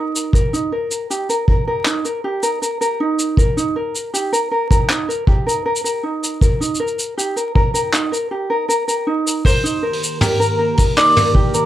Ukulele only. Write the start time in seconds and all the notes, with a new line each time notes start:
Already playing: D#4
0.34 A#4
0.53 D#4
0.72 A#4
1.10 G4
1.29 A#4
1.48 A#4
1.67 A#4
1.86 D#4
2.05 A#4
2.24 G4
2.43 A#4
2.62 A#4
2.81 A#4
3.00 D#4
3.38 A#4
3.57 D#4
3.76 A#4
4.14 G4
4.33 A#4
4.51 A#4
4.71 A#4
4.90 D#4
5.08 A#4
5.28 G4
5.46 A#4
5.66 A#4
5.84 A#4
6.03 D#4
6.41 A#4
6.60 D#4
6.80 A#4
7.17 G4
7.36 A#4
7.55 A#4
7.74 A#4
7.93 D#4
8.12 A#4
8.31 G4
8.50 A#4
8.69 A#4
8.88 A#4
9.07 D#4
9.45 A#4
9.64 D#4
9.83 A#4
10.21 G4
10.40 A#4
10.59 A#4
10.78 A#4
10.97 D#4
11.16 A#4
11.35 G4
11.54 A#4